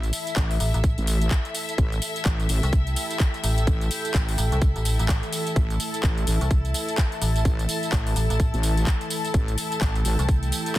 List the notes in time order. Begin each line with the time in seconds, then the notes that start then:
Already playing: A1 E3 A3 E4 A4 E5
0.03 closed hi-hat, tambourine
0.13 open hi-hat, tambourine
0.27 closed hi-hat, tambourine
0.36 A1, kick, clap, closed hi-hat, tambourine
0.51 open hi-hat, tambourine
0.60 A1, open hi-hat, tambourine
0.74 A1, closed hi-hat, tambourine
0.84 kick, closed hi-hat, tambourine
0.98 A1, closed hi-hat, tambourine
1.07 open hi-hat, tambourine
1.22 closed hi-hat, tambourine
1.31 kick, clap, closed hi-hat, tambourine
1.45 closed hi-hat, tambourine
1.55 open hi-hat, tambourine
1.69 closed hi-hat, tambourine
1.78 A1 G5, kick, closed hi-hat, tambourine
1.92 closed hi-hat, tambourine
2.02 open hi-hat, tambourine
2.16 closed hi-hat, tambourine
2.25 A1, kick, clap, closed hi-hat, tambourine
2.40 closed hi-hat, tambourine
2.49 A1, open hi-hat, tambourine
2.63 C2, closed hi-hat, tambourine
2.73 kick, closed hi-hat, tambourine
2.87 closed hi-hat, tambourine
2.96 open hi-hat, tambourine
3.11 closed hi-hat, tambourine
3.20 kick, clap, closed hi-hat, tambourine
3.34 closed hi-hat, tambourine
3.44 A1, open hi-hat, tambourine
3.58 closed hi-hat, tambourine
3.67 A1, kick, closed hi-hat, tambourine
3.81 closed hi-hat, tambourine
3.91 open hi-hat, tambourine
4.05 closed hi-hat, tambourine
4.14 A1, kick, clap, closed hi-hat, tambourine
4.29 open hi-hat, tambourine
4.38 A1, open hi-hat, tambourine
4.52 C2, closed hi-hat, tambourine
4.62 kick, closed hi-hat, tambourine
4.76 A1, closed hi-hat, tambourine
4.85 open hi-hat, tambourine
4.99 A1, closed hi-hat, tambourine
5.09 kick, clap, closed hi-hat, tambourine
5.23 closed hi-hat, tambourine
5.33 open hi-hat, tambourine
5.47 closed hi-hat, tambourine
5.56 A1 E5, kick, closed hi-hat, tambourine
5.70 A5, closed hi-hat, tambourine
5.80 open hi-hat, tambourine
5.94 closed hi-hat, tambourine
6.03 A1, kick, clap, closed hi-hat, tambourine
6.18 closed hi-hat, tambourine
6.27 A1, open hi-hat, tambourine
6.41 C2, closed hi-hat, tambourine
6.51 kick, closed hi-hat, tambourine
6.65 closed hi-hat, tambourine
6.74 open hi-hat, tambourine
6.89 closed hi-hat, tambourine
6.98 kick, clap, closed hi-hat, tambourine
7.12 closed hi-hat, tambourine
7.22 A1, open hi-hat, tambourine
7.36 closed hi-hat, tambourine
7.45 A1, kick, closed hi-hat, tambourine
7.59 closed hi-hat, tambourine
7.69 open hi-hat, tambourine
7.83 closed hi-hat, tambourine
7.92 A1, kick, clap, closed hi-hat, tambourine
8.07 open hi-hat, tambourine
8.16 A1, open hi-hat, tambourine
8.30 A1, closed hi-hat, tambourine
8.40 kick, closed hi-hat, tambourine
8.54 A1, closed hi-hat, tambourine
8.63 open hi-hat, tambourine
8.77 closed hi-hat, tambourine
8.87 kick, clap, closed hi-hat, tambourine
9.01 closed hi-hat, tambourine
9.10 open hi-hat, tambourine
9.25 closed hi-hat, tambourine
9.34 A1 G5, kick, closed hi-hat, tambourine
9.48 closed hi-hat, tambourine
9.58 open hi-hat, tambourine
9.72 closed hi-hat, tambourine
9.81 A1, kick, clap, closed hi-hat, tambourine
9.96 closed hi-hat, tambourine
10.05 A1, open hi-hat, tambourine
10.19 C2, closed hi-hat, tambourine
10.29 kick, closed hi-hat, tambourine
10.43 closed hi-hat, tambourine
10.52 open hi-hat, tambourine
10.66 closed hi-hat, tambourine